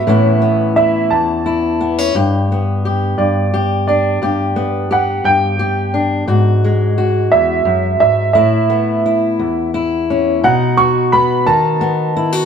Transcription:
<<
  \new Staff \with { instrumentName = "Upright piano" } { \time 6/8 \key a \lydian \tempo 4. = 58 e''4 e''8 a''4 r8 | r4. d''4 d''8~ | d''4 fis''8 g''4 r8 | r4. e''4 e''8 |
e''2 r4 | fis''8 cis'''8 b''8 a''4. | }
  \new Staff \with { instrumentName = "Steel-string acoustic guitar" } { \time 6/8 \key a \lydian << { <e b cis' e'>8 b8 e'4 e'8 b16 cis'16 | g'8 b8 g'4 g'8 d'8 | g'8 b8 g'4 g'8 d'8 | fis'8 gis8 fis'2 |
e'8 b8 e'4 e'8 cis'8 | dis'8 fis'8 b8 dis'8 b8 e'16 fis'16 | } \\ { a,4. e,4. | g,4. g,4. | g,4. g,4. | gis,4. e,8 fis,8 gis,8 |
a,4. e,4. | b,4. dis4. | } >> }
>>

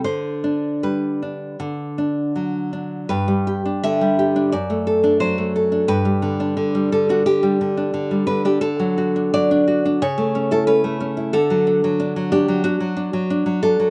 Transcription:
\new Staff \with { instrumentName = "Nylon-string guitar" } { \time 4/4 \key g \major \tempo 4 = 88 << { c''4 b'2~ b'8 r8 | b'4 e''4 d''4 c''4 | b'4. a'16 fis'16 g'4. b'16 g'16 | a'4 d''4 cis''8. a'16 b'4 |
a'4. g'8 fis'4. a'8 | } \\ { d8 d'8 g8 d'8 d8 d'8 fis8 d'8 | g,16 g16 g'16 d'16 d16 g16 g'16 d'16 fis,16 a16 a'16 d'16 fis16 a16 a'16 d'16 | g,16 g16 d16 d'16 d16 g16 d16 d'16 d16 g16 d16 d'16 d16 g16 d16 d'16 | d16 fis16 fis'16 d'16 fis16 d'16 fis'16 d'16 cis16 a16 cis'16 e'16 cis'16 a16 cis'16 e'16 |
d16 fis16 d'16 fis16 d'16 fis16 d'16 fis16 d'16 fis16 d'16 fis16 d'16 fis16 d'16 fis16 | } >> }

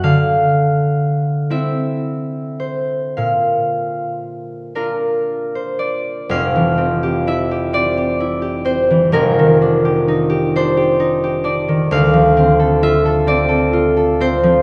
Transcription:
\new Staff \with { instrumentName = "Harp" } { \time 6/8 \key f \major \tempo 4. = 42 << { <fes'' f''>4. e''4 c''8 | f''4. bes'8. c''16 d''8 | f''4 e''8 d''4 c''8 | bes'4. c''4 d''8 |
f''4 e''8 d''4 c''8 | } \\ { d4. <c' e'>4. | bes,4. <d' f'>4. | <f,, f,>16 e16 c'16 g'16 e'16 g'16 c'16 g'16 e'16 g'16 c'16 e16 | <f,, f,>16 ees16 d'16 g'16 ees'16 g'16 d'16 g'16 ees'16 g'16 d'16 ees16 |
d,16 f16 c'16 a'16 f'16 a'16 c'16 a'16 f'16 a'16 c'16 f16 | } >> }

